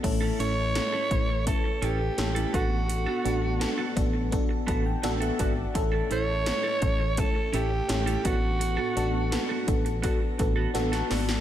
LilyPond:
<<
  \new Staff \with { instrumentName = "Alto saxophone" } { \time 4/4 \key a \mixolydian \tempo 4 = 84 r8 cis''4. a'8 g'4 fis'8~ | fis'4. r2 r8 | r8 cis''4. a'8 g'4 fis'8~ | fis'4. r2 r8 | }
  \new Staff \with { instrumentName = "Clean electric guitar" } { \time 4/4 \key a \mixolydian r16 <cis' e' a'>16 <cis' e' a'>16 r8 <cis' e' a'>16 r4 <cis' e' a'>16 r8 <cis' e' a'>16 <b fis' a'>16 r16 | r16 <b fis' a'>16 <b fis' a'>16 r8 <b fis' a'>16 r4 <b fis' a'>16 r8 <b fis' a'>16 <b fis' a'>16 r16 | r16 <cis' e' a'>16 <cis' e' a'>16 r8 <cis' e' a'>16 r4 <cis' e' a'>16 r8 <cis' e' a'>16 <b fis' a'>16 r16 | r16 <b fis' a'>16 <b fis' a'>16 r8 <b fis' a'>16 r8 <b fis' a'>16 r8 <b fis' a'>16 r16 <b fis' a'>16 <b fis' a'>16 r16 | }
  \new Staff \with { instrumentName = "FM electric piano" } { \time 4/4 \key a \mixolydian << { a,4. r2 a,8~ | a,4 r4. a''16 g''16 fis''16 e''16 d''8 | a,4. r2 a,8~ | a,4 r2 a''8 d''8 | } \\ { <a cis' e' a'>8 <a cis' e' a'>8 <a cis' e' a'>8 <a cis' e' b'>8 <a cis' e' a'>8 <a cis' e' a'>8 <a cis' e' a'>8 <b d' fis' a'>8~ | <b d' fis' a'>8 <b d' fis' a'>8 <b d' fis' a'>8 <b d' fis' a'>8 <b d' fis' a'>8 <b d' fis' a'>8 <b d' fis' a'>8 <b d' fis' a'>8 | <a cis' e' a'>8 <a cis' e' a'>8 <a cis' e' a'>8 <a cis' e' a'>8 <a cis' e' a'>8 <a cis' e' a'>8 <a cis' e' a'>8 <b d' fis' a'>8~ | <b d' fis' a'>8 <b d' fis' a'>8 <b d' fis' a'>8 <b d' fis' a'>8 <b d' fis' a'>8 <b d' fis' a'>8 <b d' fis' a'>8 <b d' fis' a'>8 | } >> }
  \new Staff \with { instrumentName = "Fingered electric bass" } { \clef bass \time 4/4 \key a \mixolydian a,,8 a,,8. r16 a,,8. r16 a,,8 a,,8 a,,8~ | a,,8 a,,8. r16 a,,8. r16 a,,8 a,,8 gis,,8 | a,,8 a,,8. r16 a,,8. r16 a,,8 a,,8 a,,8~ | a,,8 a,,8. r16 a,,8. r16 a,,8 a,,8 gis,,8 | }
  \new DrumStaff \with { instrumentName = "Drums" } \drummode { \time 4/4 <cymc hh bd>8 hh8 <hh sn>8 <hh bd>8 <hh bd>8 hh8 <hh sn>16 hh16 <hh bd>8 | hh8 hh8 <hh sn>8 <hh bd>8 <hh bd>8 <hh bd>8 <hh sn>16 hh16 <hh bd>8 | <hh bd>8 hh8 <hh sn>8 <hh bd>8 <hh bd>8 hh8 <hh sn>16 hh16 <hh bd>8 | hh8 hh8 <hh sn>8 <hh bd>16 hh16 <hh bd>8 <hh bd>8 <hh sn>16 <hh sn>16 <hho sn>16 sn16 | }
>>